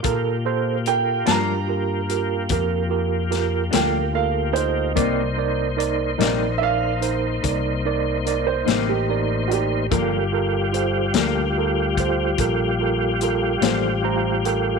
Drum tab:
HH |x-xx-xx-xx-x|x-xx-xx-xx-x|x-xx-xx-xx-x|
SD |---o----oo--|---o-----o--|---o-----o--|
BD |o-----o-----|o-----o-----|o----oo-----|